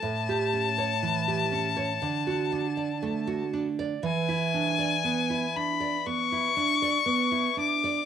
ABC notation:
X:1
M:4/4
L:1/16
Q:1/4=59
K:Emix
V:1 name="Violin"
a12- a2 z2 | g6 b2 c'6 d'2 |]
V:2 name="Nylon-string guitar"
A,, =G C c E, G C c D, F D d A, F D d | E, E D d B, E D d B, E D d B, E D d |]